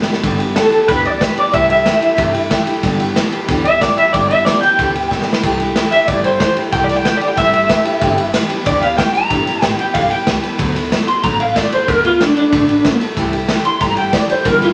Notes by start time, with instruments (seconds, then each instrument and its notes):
0.02 snare
0.06 steel-string acoustic guitar E3 G3 B3 G4, muted upright bass stroke
0.13 snare
0.23 upright bass G1, steel-string acoustic guitar G2 D3 E3 G3 B3 G4, kick, snare, ride
0.39 steel-string acoustic guitar E3 G3 B3 G4, ride
0.55 steel-string acoustic guitar E3 G3 B3 G4, clean electric guitar A4, snare, ride
0.71 steel-string acoustic guitar E3 G3 B3 G4, muted upright bass stroke, ride
0.88 upright bass D2, steel-string acoustic guitar G2 D3 E3 G3 B3 G4, clean electric guitar B4, kick, snare, ride
1.05 steel-string acoustic guitar E3 G3 B3 G4, clean electric guitar D5, ride
1.21 steel-string acoustic guitar E3 G3 B3 G4, clean electric guitar B4, kick, snare, ride
1.37 steel-string acoustic guitar E3 G3 B3 G4, clean electric guitar D5, muted upright bass stroke, ride
1.52 upright bass C2, steel-string acoustic guitar C3 E3 A3 E4 G4, clean electric guitar E5, kick, ride
1.70 steel-string acoustic guitar A3 E4 G4, clean electric guitar E5, ride
1.85 steel-string acoustic guitar E3 A3 E4 G4, snare, ride
2.01 steel-string acoustic guitar A3 E4 G4, ride
2.17 upright bass G2, steel-string acoustic guitar C3 E3 A3 E4 G4, kick, ride
2.33 steel-string acoustic guitar A3 E4 G4, ride
2.50 steel-string acoustic guitar E3 A3 E4 G4, kick, snare, ride
2.66 steel-string acoustic guitar A3 E4 G4, muted upright bass stroke, ride
2.83 upright bass G1, steel-string acoustic guitar G2 D3 E3 G3 B3 G4, kick, snare, ride
3.00 steel-string acoustic guitar E3 G3 B3 G4, ride
3.16 steel-string acoustic guitar E3 G3 B3, snare, ride
3.20 steel-string acoustic guitar G4
3.32 steel-string acoustic guitar G3 B3 G4, muted upright bass stroke, ride
3.36 steel-string acoustic guitar E3
3.48 upright bass D2, steel-string acoustic guitar G2 D3 E3 G3 B3 G4, kick, snare, ride
3.65 steel-string acoustic guitar E3 G3 B3 G4, clean electric guitar E5, ride
3.81 steel-string acoustic guitar E3 G3 B3 G4, clean electric guitar D5, kick, snare, ride
3.97 steel-string acoustic guitar E3 G3 B3 G4, clean electric guitar E5, muted upright bass stroke, ride
4.13 upright bass G1, steel-string acoustic guitar G2 D3 E3 G3 B3 G4, clean electric guitar D5, kick, snare, ride
4.28 steel-string acoustic guitar G3 B3 G4, clean electric guitar E5, ride
4.33 steel-string acoustic guitar E3
4.45 steel-string acoustic guitar E3 G3 B3, clean electric guitar D5, snare, ride
4.50 steel-string acoustic guitar G4
4.61 steel-string acoustic guitar G3 B3 G4, clean electric guitar G5, muted upright bass stroke, ride
4.66 steel-string acoustic guitar E3
4.79 upright bass D2, steel-string acoustic guitar G2 D3 E3 G3 B3 G4, kick, ride
4.95 steel-string acoustic guitar E3 G3 B3 G4, ride
5.11 steel-string acoustic guitar E3 G3 B3 G4, kick, snare
5.22 snare
5.27 steel-string acoustic guitar E3 G3 B3 G4, muted upright bass stroke
5.33 snare
5.43 upright bass C2, steel-string acoustic guitar C3 E3 A3 E4 G4, kick, ride
5.60 steel-string acoustic guitar A3 E4 G4, ride
5.76 steel-string acoustic guitar E3 A3 E4, snare, ride
5.80 steel-string acoustic guitar G4
5.91 steel-string acoustic guitar E4 G4, clean electric guitar E5, ride
5.97 steel-string acoustic guitar A3
6.07 upright bass G1, steel-string acoustic guitar C3 E3 A3, clean electric guitar D5, kick, ride
6.12 steel-string acoustic guitar E4 G4
6.24 steel-string acoustic guitar A3 E4 G4, clean electric guitar C5, ride
6.40 steel-string acoustic guitar E3 A3 E4, clean electric guitar C5, kick, snare, ride
6.45 steel-string acoustic guitar G4
6.56 steel-string acoustic guitar A3 E4 G4, muted upright bass stroke, ride
6.72 upright bass C2, steel-string acoustic guitar C3 E3 A3 E4 G4, clean electric guitar G5, kick, ride
6.84 clean electric guitar D5
6.89 steel-string acoustic guitar A3 E4 G4, snare, ride
6.96 clean electric guitar G5
7.05 steel-string acoustic guitar E3 A3 E4 G4, clean electric guitar G5, snare, ride
7.17 clean electric guitar D5
7.21 steel-string acoustic guitar A3 E4 G4, ride
7.28 clean electric guitar G5
7.36 upright bass G1, steel-string acoustic guitar C3 E3 A3 E4 G4, clean electric guitar E5, kick, snare, ride
7.53 steel-string acoustic guitar A3 E4 G4, ride
7.68 steel-string acoustic guitar E3 A3 E4 G4, kick, snare, ride
7.85 steel-string acoustic guitar A3 E4 G4, muted upright bass stroke, snare, ride
8.01 upright bass G1, steel-string acoustic guitar G2 D3 E3 G3 B3 G4, kick, snare, ride
8.16 steel-string acoustic guitar E3 G3 B3 G4, ride
8.33 steel-string acoustic guitar E3 G3 B3 G4, snare, ride
8.49 steel-string acoustic guitar E3 G3 B3 G4, muted upright bass stroke, ride
8.65 upright bass D2, steel-string acoustic guitar G2 D3 E3 G3 B3 G4, clean electric guitar D5, kick, ride
8.81 steel-string acoustic guitar E3 G3 B3 G4, clean electric guitar F5, ride
8.98 steel-string acoustic guitar E3 G3 B3 G4, clean electric guitar G5, kick, snare, ride
9.13 steel-string acoustic guitar E3 G3 B3 G4, clean electric guitar A#5, snare, ride
9.30 upright bass G1, steel-string acoustic guitar G2 D3 E3 G3 B3 G4, kick, snare, ride
9.46 steel-string acoustic guitar E3 G3 B3 G4, muted upright bass stroke, snare, ride
9.61 upright bass A1, steel-string acoustic guitar E3 G3 B3 G4, clean electric guitar G5, snare, ride
9.78 steel-string acoustic guitar E3 G3 B3 G4, clean electric guitar G5, ride
9.94 upright bass B1, steel-string acoustic guitar G2 D3 E3 G3 B3 G4, clean electric guitar F5, kick, snare, ride
10.10 steel-string acoustic guitar E3 G3 B3 G4, clean electric guitar G5, muted upright bass stroke, ride
10.26 upright bass C2, steel-string acoustic guitar E3 G3 B3 G4, kick, snare, ride
10.42 steel-string acoustic guitar E3 G3 B3 G4, muted upright bass stroke, snare, ride
10.58 upright bass D2, steel-string acoustic guitar D3 F#3 A3 B3 F#4, kick, ride
10.75 steel-string acoustic guitar A3 B3 F#4, snare, ride
10.90 steel-string acoustic guitar F#3 A3 B3 F#4, snare, ride
11.07 steel-string acoustic guitar A3 B3 F#4, clean electric guitar C6, muted upright bass stroke, ride
11.23 upright bass A1, steel-string acoustic guitar D3 F#3 A3 B3 F#4, clean electric guitar A#5, kick, ride
11.39 steel-string acoustic guitar A3 B3 F#4, clean electric guitar F5, ride
11.56 steel-string acoustic guitar F#3 A3 B3 F#4, clean electric guitar D5, kick, snare, ride
11.72 steel-string acoustic guitar A3 B3 F#4, clean electric guitar C5, muted upright bass stroke, ride
11.88 upright bass D2, steel-string acoustic guitar D3 F#3 A3 B3 F#4, clean electric guitar A#4, kick, ride
12.03 steel-string acoustic guitar A3 B3 F#4, clean electric guitar F4, ride
12.20 steel-string acoustic guitar F#3 A3 B3 F#4, clean electric guitar D4, snare, ride
12.36 steel-string acoustic guitar A3 B3 F#4, clean electric guitar D4, muted upright bass stroke, ride
12.52 upright bass A1, steel-string acoustic guitar D3 F#3 A3 B3 F#4, kick, snare, ride
12.69 steel-string acoustic guitar A3 B3 F#4, ride
12.85 steel-string acoustic guitar F#3 A3 B3 F#4, kick, snare, ride
13.00 steel-string acoustic guitar B3 F#4, muted upright bass stroke, snare, ride
13.05 steel-string acoustic guitar A3
13.17 upright bass C2, steel-string acoustic guitar C3 E3 A3 E4 G4, kick, ride
13.33 steel-string acoustic guitar A3 E4 G4, ride
13.48 steel-string acoustic guitar E3 A3 E4, snare, ride
13.53 steel-string acoustic guitar G4
13.64 steel-string acoustic guitar E4 G4, clean electric guitar C6, muted upright bass stroke, ride
13.68 steel-string acoustic guitar A3
13.81 upright bass G1, steel-string acoustic guitar C3 E3 A3 E4 G4, clean electric guitar A#5, kick, snare, ride
13.97 steel-string acoustic guitar E4 G4, clean electric guitar G5, ride
14.01 steel-string acoustic guitar A3
14.13 steel-string acoustic guitar E3 A3 E4 G4, clean electric guitar D5, kick, snare, ride
14.28 steel-string acoustic guitar A3 E4 G4, clean electric guitar C5, muted upright bass stroke, snare, ride
14.45 upright bass G1, steel-string acoustic guitar G2 D3 E3 G3 B3 E4, clean electric guitar A#4, kick, snare, ride
14.61 steel-string acoustic guitar E3 G3 B3 E4, clean electric guitar F4, snare, ride